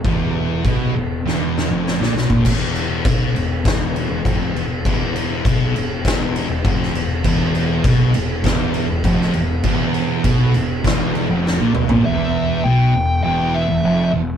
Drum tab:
CC |x---x-----------|x-x-x-x-x-x-x-x-|x-x-x-x-x-x-x-x-|x-x-x-x-x-x-x-x-|
SD |--------o-o-ooo-|--------o-------|--------o----o--|--------o----o--|
T2 |----------------|----------------|----------------|----------------|
FT |----------------|----------------|----------------|----------------|
BD |o---o----------o|o---o---o---o---|o---o---o---o---|o---o---o---o---|

CC |x-x-x-x-x-x-----|----------------|
SD |--------o---o---|----------------|
T2 |--------------o-|----------------|
FT |---------------o|----------------|
BD |o---o---o-------|----------------|